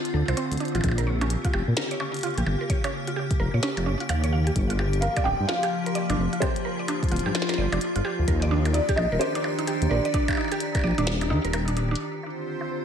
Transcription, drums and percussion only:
0.05 closed hi-hat
0.28 closed hi-hat, percussion blips
0.37 closed hi-hat
0.52 closed hi-hat
0.58 closed hi-hat
0.60 closed hi-hat
0.65 closed hi-hat
0.68 closed hi-hat
0.75 closed hi-hat, percussion blips
0.81 kick, closed hi-hat, percussion blips
0.84 percussion blips
0.89 percussion blips
0.91 percussion blips
0.98 closed hi-hat
1.21 closed hi-hat, percussion blips
1.30 closed hi-hat
1.45 kick, closed hi-hat
1.54 percussion blips
1.77 snare, closed hi-hat
1.91 closed hi-hat
2.00 percussion blips
2.14 closed hi-hat
2.17 closed hi-hat
2.19 closed hi-hat
2.21 closed hi-hat
2.23 closed hi-hat
2.31 closed hi-hat
2.34 closed hi-hat
2.38 closed hi-hat
2.47 percussion blips
2.70 kick, closed hi-hat
2.84 closed hi-hat, percussion blips
3.07 closed hi-hat
3.31 kick, closed hi-hat
3.63 snare, closed hi-hat
3.77 closed hi-hat, percussion blips
4.00 closed hi-hat
4.09 closed hi-hat, percussion blips
4.24 closed hi-hat
4.47 closed hi-hat
4.56 kick, closed hi-hat
4.70 closed hi-hat
4.79 percussion blips
4.93 closed hi-hat
5.02 closed hi-hat
5.17 kick, closed hi-hat, percussion blips
5.49 snare
5.63 closed hi-hat, percussion blips
5.86 closed hi-hat
5.95 closed hi-hat
6.10 closed hi-hat, percussion blips
6.33 closed hi-hat
6.42 kick, closed hi-hat, percussion blips
6.56 closed hi-hat
6.88 closed hi-hat, percussion blips
7.03 kick, closed hi-hat
7.09 closed hi-hat
7.12 closed hi-hat
7.16 closed hi-hat
7.19 closed hi-hat
7.35 snare, closed hi-hat, percussion blips
7.42 snare
7.49 snare, closed hi-hat
7.54 snare
7.72 closed hi-hat, percussion blips
7.81 closed hi-hat
7.96 closed hi-hat
8.28 kick, closed hi-hat
8.42 closed hi-hat
8.65 closed hi-hat, percussion blips
8.74 closed hi-hat
8.89 kick, closed hi-hat
8.98 percussion blips
9.21 closed hi-hat
9.35 closed hi-hat
9.44 percussion blips
9.59 closed hi-hat
9.67 closed hi-hat
9.82 closed hi-hat
10.05 closed hi-hat
10.14 kick, closed hi-hat
10.28 kick, closed hi-hat, percussion blips
10.31 percussion blips
10.33 percussion blips
10.35 percussion blips
10.37 percussion blips
10.41 percussion blips
10.44 percussion blips
10.48 closed hi-hat, percussion blips
10.60 closed hi-hat
10.75 kick, closed hi-hat, percussion blips
10.77 percussion blips
10.79 percussion blips
10.81 percussion blips
10.84 percussion blips
10.87 percussion blips
10.91 percussion blips
10.95 closed hi-hat, percussion blips
11.07 snare, closed hi-hat
11.21 closed hi-hat, percussion blips
11.45 closed hi-hat
11.53 closed hi-hat, percussion blips
11.68 closed hi-hat
11.77 closed hi-hat
11.96 closed hi-hat
12.14 closed hi-hat
12.23 percussion blips
12.46 closed hi-hat
12.61 closed hi-hat, percussion blips

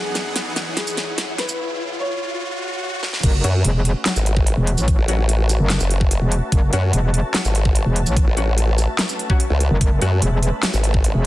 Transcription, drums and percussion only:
0.15 snare, closed hi-hat
0.36 snare, closed hi-hat
0.56 snare, closed hi-hat
0.77 snare, closed hi-hat
0.87 shaker
0.97 snare, closed hi-hat
1.18 snare, closed hi-hat
1.38 snare, closed hi-hat
1.49 shaker
3.03 snare
3.13 snare
3.23 kick, closed hi-hat, crash
3.44 closed hi-hat
3.65 closed hi-hat
3.85 closed hi-hat
4.06 snare, clap, closed hi-hat
4.16 shaker
4.26 closed hi-hat
4.37 kick
4.47 closed hi-hat
4.67 closed hi-hat
4.78 shaker
4.88 kick, closed hi-hat
5.08 closed hi-hat
5.29 closed hi-hat
5.49 closed hi-hat, shaker
5.70 snare, clap, closed hi-hat
5.80 shaker
5.91 closed hi-hat
6.01 kick
6.11 closed hi-hat
6.32 closed hi-hat
6.52 kick, closed hi-hat
6.73 closed hi-hat
6.93 closed hi-hat
7.14 closed hi-hat
7.34 snare, clap, closed hi-hat
7.45 shaker
7.55 closed hi-hat
7.65 kick
7.75 closed hi-hat
7.96 closed hi-hat
8.06 shaker
8.17 kick, closed hi-hat
8.37 closed hi-hat
8.58 closed hi-hat
8.78 closed hi-hat, shaker
8.99 snare, clap, closed hi-hat
9.09 shaker
9.19 closed hi-hat
9.30 kick
9.40 closed hi-hat
9.60 closed hi-hat
9.81 kick, closed hi-hat
10.02 closed hi-hat
10.22 closed hi-hat
10.43 closed hi-hat
10.63 snare, clap, closed hi-hat
10.74 shaker
10.84 closed hi-hat
10.94 kick
11.04 closed hi-hat

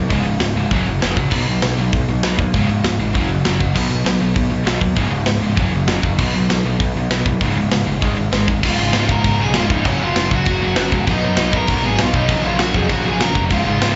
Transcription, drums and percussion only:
0.10 kick, open hi-hat
0.40 snare, open hi-hat
0.71 kick, open hi-hat
1.02 snare, open hi-hat
1.17 kick
1.31 kick, crash
1.62 snare, open hi-hat
1.92 kick, open hi-hat
2.23 snare, open hi-hat
2.39 kick
2.54 kick, open hi-hat
2.84 snare, open hi-hat
3.15 kick, open hi-hat
3.45 snare, open hi-hat
3.61 kick
3.76 kick, crash
4.06 snare, open hi-hat
4.36 kick, open hi-hat
4.67 snare, open hi-hat
4.81 kick
4.96 kick, open hi-hat
5.26 snare, open hi-hat
5.57 kick, open hi-hat
5.88 snare, open hi-hat
6.03 kick
6.19 kick, crash
6.50 snare, open hi-hat
6.80 kick, open hi-hat
7.11 snare, open hi-hat
7.26 kick
7.41 kick, open hi-hat
7.72 snare, open hi-hat
8.02 kick, open hi-hat
8.33 snare, open hi-hat
8.48 kick
8.63 kick, crash
8.93 snare, crash
9.09 kick
9.24 kick, crash
9.54 snare, crash
9.70 kick
9.85 kick, crash
10.16 snare, crash
10.31 kick
10.45 kick, crash
10.76 snare, crash
10.92 kick
11.07 kick, crash
11.37 snare, crash
11.53 kick
11.67 kick, crash
11.99 snare, crash
12.14 kick
12.29 kick, crash
12.59 snare, crash
12.74 kick
12.89 kick, crash
13.21 snare, crash
13.35 kick
13.51 kick, crash
13.82 snare, crash

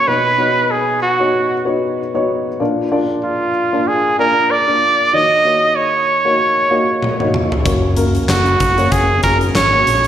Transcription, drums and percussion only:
7.02 high tom
7.20 mid tom
7.34 mid tom
7.52 floor tom
7.65 kick, closed hi-hat
7.97 closed hi-hat
8.15 closed hi-hat
8.29 snare, clap, closed hi-hat
8.46 closed hi-hat
8.60 kick, closed hi-hat
8.78 closed hi-hat
8.92 kick, closed hi-hat
9.23 kick, closed hi-hat
9.41 closed hi-hat
9.55 snare, clap, closed hi-hat
9.87 closed hi-hat
10.04 closed hi-hat

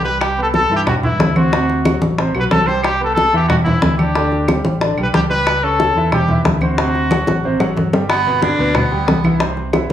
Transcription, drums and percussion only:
0.05 high bongo, high conga
0.21 high bongo, high conga, claves
0.38 high conga
0.54 high bongo, high conga
0.87 high bongo, high conga, low conga, claves
1.03 high conga, low conga
1.20 high bongo, low bongo, high conga
1.36 high conga, claves
1.53 high bongo
1.69 high bongo, high conga
1.85 high bongo, high conga, claves
2.02 high bongo, high conga
2.18 high bongo, high conga
2.35 high conga, claves
2.51 high bongo, low bongo, high conga
2.68 high bongo, high conga
2.84 high bongo, high conga, claves
3.01 high conga
3.17 high bongo, high conga
3.50 high bongo, high conga, low conga, claves
3.66 high conga, low conga
3.82 high bongo, low bongo, high conga
3.99 high conga, claves
4.15 high bongo, high conga
4.32 high bongo, high conga
4.48 high bongo, high conga, claves
4.65 high bongo, high conga
4.81 high bongo, high conga
4.98 high conga, claves
5.14 high bongo, low bongo, high conga
5.30 high bongo, high conga
5.46 high bongo, high conga, claves
5.63 high conga
5.80 high bongo, high conga
6.12 high bongo, high conga, low conga, claves
6.28 high conga, low conga
6.44 high bongo, low bongo, high conga
6.61 high conga, claves
6.78 high bongo, high conga
6.94 high bongo, high conga
7.11 high bongo, high conga, claves
7.27 high bongo, high conga
7.44 high conga
7.60 low bongo, high conga, claves
7.77 low bongo, high conga
7.93 low bongo, high conga
8.09 high bongo, high conga, claves
8.26 high conga
8.42 high bongo, high conga
8.75 high bongo, high conga, low conga, claves
8.92 high conga
9.08 high bongo, low bongo, high conga
9.24 high conga, claves
9.40 high bongo, high conga
9.57 high bongo, high conga
9.73 high bongo, high conga, claves

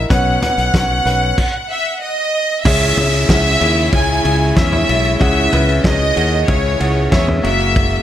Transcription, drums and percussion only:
0.10 kick, closed hi-hat
0.42 closed hi-hat, floor tom
0.58 closed hi-hat
0.74 kick, snare, closed hi-hat
1.07 closed hi-hat
1.38 kick, crash
2.65 kick, crash
2.97 floor tom, ride
3.13 ride
3.29 kick, snare, ride
3.61 ride
3.93 kick, ride
4.25 ride
4.56 kick, snare, ride
4.73 floor tom
4.89 ride
5.05 ride
5.21 kick, ride
5.53 floor tom, ride
5.69 ride
5.84 kick, snare, ride
6.17 ride
6.48 kick, ride
6.80 ride
7.12 kick, snare, ride
7.28 floor tom
7.44 ride
7.60 ride
7.76 kick, ride

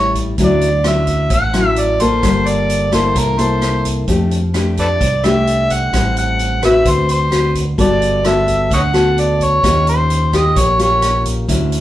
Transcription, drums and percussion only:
0.15 kick, closed hi-hat
0.38 kick, closed hi-hat
0.61 closed hi-hat
0.84 cross-stick, closed hi-hat
1.07 kick, closed hi-hat
1.30 kick, closed hi-hat
1.53 cross-stick, closed hi-hat
1.76 closed hi-hat
2.00 kick, closed hi-hat
2.23 kick, cross-stick, closed hi-hat
2.46 closed hi-hat
2.70 closed hi-hat
2.92 kick, cross-stick, closed hi-hat
3.15 kick, closed hi-hat
3.38 closed hi-hat
3.62 cross-stick, closed hi-hat
3.85 kick, closed hi-hat
4.08 kick, closed hi-hat
4.31 closed hi-hat
4.54 cross-stick, closed hi-hat
4.77 kick, closed hi-hat
5.01 kick, closed hi-hat
5.24 cross-stick, closed hi-hat
5.47 closed hi-hat
5.70 kick, closed hi-hat
5.93 kick, cross-stick, closed hi-hat
6.17 closed hi-hat
6.39 closed hi-hat
6.62 kick, cross-stick, closed hi-hat
6.85 kick, closed hi-hat
7.09 closed hi-hat
7.32 cross-stick, closed hi-hat
7.55 kick, closed hi-hat
7.78 kick, closed hi-hat
8.02 closed hi-hat
8.24 cross-stick, closed hi-hat
8.48 kick, closed hi-hat
8.71 kick, closed hi-hat
8.94 cross-stick, closed hi-hat
9.18 closed hi-hat
9.40 kick, closed hi-hat
9.63 kick, cross-stick, closed hi-hat
9.87 closed hi-hat
10.10 closed hi-hat
10.33 kick, cross-stick, closed hi-hat
10.56 kick, closed hi-hat
10.79 closed hi-hat
11.02 cross-stick, closed hi-hat
11.25 kick, closed hi-hat
11.49 kick, closed hi-hat
11.72 closed hi-hat

